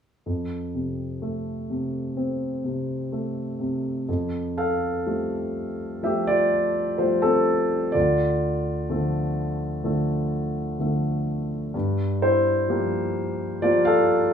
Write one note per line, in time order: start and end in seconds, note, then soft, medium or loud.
0.26 4.04 F2 soft
0.75 1.68 C3 soft
1.22 3.07 A3 soft
1.70 2.63 C3 soft
2.17 4.04 C4 soft
2.64 3.58 C3 soft
3.12 4.05 A3 soft
3.59 4.07 C3 soft
4.08 7.91 F2 soft
4.57 6.00 A4 medium
4.57 6.08 F5 medium
5.06 6.01 F3 soft
5.06 6.01 G3 soft
5.06 6.01 A3 soft
6.03 6.96 F3 soft
6.03 6.96 G3 soft
6.03 6.96 A3 soft
6.03 6.26 G4 medium
6.03 6.26 E5 medium
6.27 6.96 F4 medium
6.27 6.95 D5 medium
6.98 7.91 F3 soft
6.98 7.91 G3 soft
6.98 7.92 A3 soft
6.98 7.22 F4 soft
6.98 7.23 C5 medium
7.22 7.91 C4 medium
7.22 7.90 A4 medium
7.92 11.70 D2 medium
7.92 10.75 F4 soft
7.92 10.74 D5 medium
8.90 9.82 D3 soft
8.90 9.82 F3 soft
8.90 9.82 A3 soft
9.84 10.76 D3 soft
9.84 10.76 F3 soft
9.84 10.77 A3 medium
10.79 11.71 D3 soft
10.79 11.72 F3 soft
10.79 11.72 A3 soft
11.74 14.33 G2 medium
12.22 13.59 E4 medium
12.22 13.68 C5 medium
12.69 13.60 F3 soft
12.69 13.60 G3 soft
12.69 13.60 A#3 medium
13.62 14.33 F3 medium
13.62 14.33 G3 soft
13.62 14.33 A#3 medium
13.62 13.85 F4 medium
13.62 13.87 D5 medium
13.85 14.33 A4 medium
13.85 14.33 F5 medium